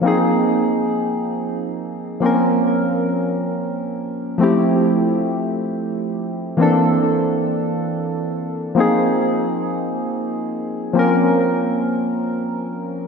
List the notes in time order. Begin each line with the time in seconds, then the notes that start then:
0.01 F3 A#3 C4
0.06 D#4 G#4
2.20 F3 A#3 C4
2.25 C#4 A#4
4.38 F3 A3 C4
4.43 E4 G4
6.57 E3 A#3 C4
6.61 D4 A4
8.75 F3 A#3 C4
8.79 D#4 G#4
10.93 F3 A#3 C4 C#4
10.99 A#4